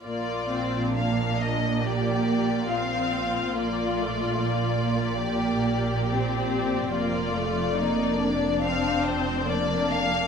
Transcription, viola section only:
X:1
M:4/4
L:1/8
Q:1/4=70
K:Bb
V:1 name="Viola section"
B, C B,2 B,2 C2 | B, A, B,2 B,2 C2 | B, A, B,2 C2 B,2 |]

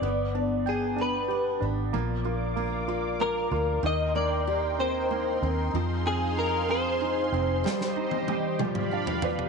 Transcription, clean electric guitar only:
X:1
M:6/8
L:1/8
Q:3/8=63
K:Gphr
V:1 name="Clean electric guitar"
d2 A =B2 z | z4 B2 | e d2 c2 z | z A B c3- |
c4 z2 |]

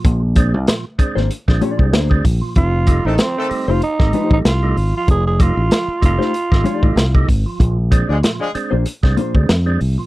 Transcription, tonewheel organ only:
X:1
M:4/4
L:1/16
Q:"Swing 16ths" 1/4=95
K:Bb
V:1 name="Tonewheel organ"
F, z [_A,CD] [CD] [B,,F,] z [A,CD] [CD] z [A,CD] [B,,F,] [A,CD] z [A,CD] z [B,,F,] | F, z [G,A,E] [A,E] F, z [G,A,E] z2 [G,A,E] F, [G,A,E] z [G,A,E] z F, | F, z [G,A,E] E F, z [G,A,E] [A,E] z [G,A,E] F, [G,A,E] z [G,A,E] z F, | [B,,F,] z [_A,CD] [CD] [B,,F,] z [A,CD] [CD] z [A,CD] [B,,F,] [A,CD] z [A,CD] z [B,,F,] |]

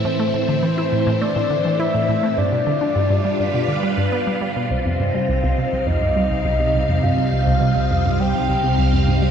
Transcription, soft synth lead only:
X:1
M:4/4
L:1/8
Q:1/4=103
K:Gmix
V:1 name="Soft synth lead"
c4 d2 e2 | d6 z2 | [K:Cm] c4 e4 | f4 g3 z |]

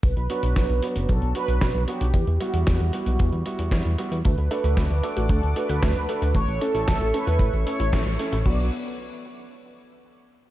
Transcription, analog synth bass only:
X:1
M:4/4
L:1/16
Q:1/4=114
K:Bm
V:1 name="Analog synth bass" clef=bass
B,,, B,,, z B,,, B,,, B,,, z F,,, B,,, B,,, z B,,, B,,, B,,, z B,,, | E,, E,, z E,, E,, E,, z B,,, E,, E,, z E,, E,, E,, z E,, | D,, D,, z D,, D,, D,, z A,,, D,, D,, z D,, D,, D,, z D,, | A,,, A,,, z A,,, A,,, A,,, z E,, A,,, A,,, z A,,, A,,, A,,, z A,,, |
B,,,2 z12 z2 |]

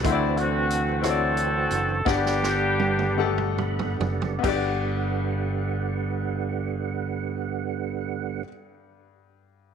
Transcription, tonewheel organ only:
X:1
M:6/8
L:1/8
Q:3/8=45
K:G
V:1 name="Tonewheel organ"
z6 | z4 b d | z6 | z6 |]
V:2 name="Tonewheel organ"
[E,CDF]6 | [D,G,B,f]6 | [D,G,B,f]6- | [D,G,B,f]6 |]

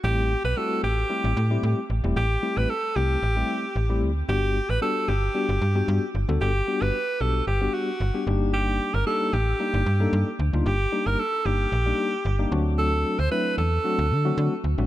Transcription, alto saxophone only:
X:1
M:4/4
L:1/16
Q:1/4=113
K:Ador
V:1 name="Alto saxophone"
G3 B A2 G8 z2 | G3 B A2 G8 z2 | G3 B A2 G8 z2 | G3 B3 A2 G2 F4 z2 |
G3 _B A2 G8 z2 | G3 _B A2 G8 z2 | A3 c B2 A8 z2 |]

